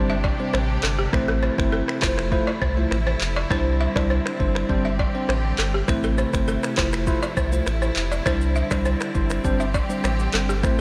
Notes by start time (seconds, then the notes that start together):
Already playing: G1 C3 G3 C4 D4 G4 C5
0.10 E5
0.24 D5, kick
0.39 G3 C4 D4 C5
0.54 A1 C5, finger snap, cross-stick
0.83 G1 A4, clap
0.99 G4
1.13 A1 E3 A3 C4 E4 C5, finger snap, kick, cross-stick
1.28 A4
1.43 C5
1.58 G1 A3 C4 E4 C5, finger snap, kick, cross-stick
1.72 A4
1.88 finger snap, cross-stick
2.02 F1 F3 A3 E4 F4 C5, finger snap, kick, cross-stick, clap
2.18 finger snap, cross-stick
2.32 A3 E4 F4 C5, kick
2.47 D5
2.62 C2 C5, kick
2.77 A3 E4 F4 C5
2.91 A1, finger snap, cross-stick
3.07 C5
3.21 F1, clap
3.36 D5
3.50 C2 D3 G3 C4 D4 E4 C5, finger snap, kick, cross-stick
3.81 E5
3.95 C2 G3 D4 E4 C5 D5, finger snap, kick, cross-stick
4.10 C5
4.26 finger snap, cross-stick
4.39 G1 G3 D4 E4 C5, kick
4.55 finger snap, cross-stick
4.69 G1 D3 G3 C4 D4 G4 C5, kick
4.85 E5
4.99 D5, kick
5.14 G3 C4 D4 C5
5.29 A1 C5, finger snap, cross-stick
5.58 G1 A4, clap
5.74 G4
5.88 A1 C3 E3 A3 C4 E4 C5, finger snap, kick, cross-stick, shaker
6.03 A4, shaker
6.18 C5, shaker
6.33 G1 A3 C4 E4 C5, finger snap, kick, cross-stick, shaker
6.48 A4, shaker
6.63 finger snap, cross-stick, shaker
6.77 F1 F3 A3 E4 F4 C5, finger snap, kick, cross-stick, clap, shaker
6.93 finger snap, cross-stick, shaker
7.07 A3 E4 F4 C5, kick, shaker
7.23 D5, shaker
7.37 C2 C5, kick, shaker
7.52 A3 E4 F4 C5, shaker
7.66 A1, finger snap, cross-stick, shaker
7.82 C5, shaker
7.96 F1, clap, shaker
8.12 D5, shaker
8.26 C2 D3 G3 C4 D4 E4 C5, finger snap, kick, cross-stick, shaker
8.41 shaker
8.55 E5, shaker
8.71 C2 G3 D4 E4 C5 D5, finger snap, kick, cross-stick, shaker
8.85 C5, shaker
9.00 finger snap, cross-stick, shaker
9.15 G1 G3 D4 E4 C5, kick, shaker
9.30 finger snap, cross-stick, shaker
9.44 G1 D3 G3 C4 D4 G4 C5, kick, shaker
9.60 E5, shaker
9.74 D5, kick, shaker
9.89 G3 C4 D4 C5, shaker
10.04 A1 C5, finger snap, cross-stick, shaker
10.19 shaker
10.33 G1 G3 C4 D4 A4 C5, clap, shaker
10.49 G4, shaker
10.63 A1 C3 E3 A3 C4 E4 C5, finger snap, kick, cross-stick, shaker